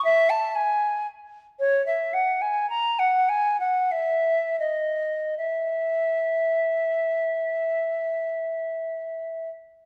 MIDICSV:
0, 0, Header, 1, 2, 480
1, 0, Start_track
1, 0, Key_signature, 4, "major"
1, 0, Tempo, 524017
1, 31, Time_signature, 3, 2, 24, 8
1, 1952, Tempo, 575264
1, 2912, Tempo, 628931
1, 3392, Tempo, 681818
1, 3872, Tempo, 764331
1, 6272, Tempo, 746269
1, 7199, End_track
2, 0, Start_track
2, 0, Title_t, "Flute"
2, 0, Program_c, 0, 73
2, 41, Note_on_c, 0, 76, 101
2, 272, Note_on_c, 0, 81, 88
2, 286, Note_off_c, 0, 76, 0
2, 507, Note_on_c, 0, 80, 83
2, 521, Note_off_c, 0, 81, 0
2, 982, Note_off_c, 0, 80, 0
2, 1464, Note_on_c, 0, 73, 87
2, 1689, Note_off_c, 0, 73, 0
2, 1707, Note_on_c, 0, 76, 77
2, 1956, Note_on_c, 0, 78, 71
2, 1968, Note_off_c, 0, 76, 0
2, 2189, Note_on_c, 0, 80, 80
2, 2202, Note_off_c, 0, 78, 0
2, 2419, Note_off_c, 0, 80, 0
2, 2424, Note_on_c, 0, 82, 90
2, 2669, Note_on_c, 0, 78, 79
2, 2681, Note_off_c, 0, 82, 0
2, 2918, Note_on_c, 0, 80, 75
2, 2929, Note_off_c, 0, 78, 0
2, 3151, Note_off_c, 0, 80, 0
2, 3155, Note_on_c, 0, 78, 63
2, 3396, Note_on_c, 0, 76, 71
2, 3406, Note_off_c, 0, 78, 0
2, 3871, Note_off_c, 0, 76, 0
2, 3875, Note_on_c, 0, 75, 66
2, 4348, Note_off_c, 0, 75, 0
2, 4363, Note_on_c, 0, 76, 63
2, 6967, Note_off_c, 0, 76, 0
2, 7199, End_track
0, 0, End_of_file